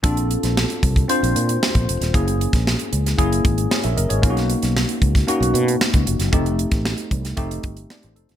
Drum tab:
HH |xxxx-xxxxxxx-xxx|xxxx-xxxxxxx-xxx|xxxx-xxxxxxx-xxx|xxxx-xxxxxxx-xxx|
SD |---oo-------o--o|---oo--o----o---|-o-oo--o----o--o|---oo--o----o--o|
BD |o-----oo-----o--|o--o----o-o-----|o-----oo-----o--|o--o--o-o-o-----|